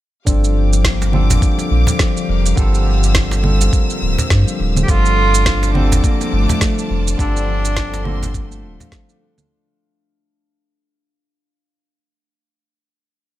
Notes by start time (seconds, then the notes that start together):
0.25 G1 D3 F3 G3 C4 D4 F4 G4 D5 F5 D6, kick, shaker
0.29 A4
0.44 shaker
0.56 G3
0.73 shaker
0.84 A#3, kick, snare, shaker
1.02 cajon slap, shaker
1.11 D3 F3 G3 C4 F4 A4, low conga
1.30 cajon bass, cajon slap, shaker
1.42 G3, kick, shaker
1.59 cajon slap, shaker
1.71 A#1 F3
1.87 cajon bass, shaker
1.99 G3, kick, snare, shaker
2.17 shaker
2.29 F1 A#3
2.46 shaker
2.55 G1 D3 F3 G3 C4 F4 E6, kick, shaker
2.59 A4
2.75 shaker
2.86 G3
3.03 shaker
3.15 F3, kick, snare, shaker
3.31 cajon slap, shaker
3.42 D3 G3 C4 F4, low conga
3.46 A4
3.61 cajon slap, shaker
3.73 A#3, kick, shaker
3.90 shaker
4.01 D1 F3
4.18 cajon bass, shaker
4.30 G2 G3, kick, snare, shaker
4.48 shaker
4.59 D1 F3
4.77 low conga, shaker
4.83 D3 G4
4.88 G1 G3 A3 C4 F4 A4 D5 A5 D6, kick, shaker
5.06 shaker
5.17 D4
5.34 shaker
5.45 F3, kick, snare, shaker
5.63 cajon slap, shaker
5.73 D3 G3 A3 C4 F4, low conga
5.77 A4
5.92 cajon bass, cajon slap, shaker
6.04 F3 A#3, kick, shaker
6.21 cajon slap, shaker
6.32 G1 A3
6.49 cajon bass, shaker
6.61 kick, snare, shaker
6.79 shaker
6.90 F1 F3
7.08 shaker
7.17 G1 D3 G3 A3 C4 D4 F4 A4 C6, kick, shaker
7.37 shaker
7.48 F3
7.65 shaker
7.77 A3, kick, snare, shaker
7.94 cajon slap, shaker
8.04 D3 G3 A#3 C4 D4 F4, low conga
8.08 A4
8.23 cajon bass, cajon slap, shaker
8.34 F3 A3, kick, shaker
8.52 shaker
8.63 D1 F4
8.80 F5, cajon bass, shaker
8.92 A3, kick, snare, shaker
9.09 D4, shaker
9.21 D4
9.38 F4, low conga, shaker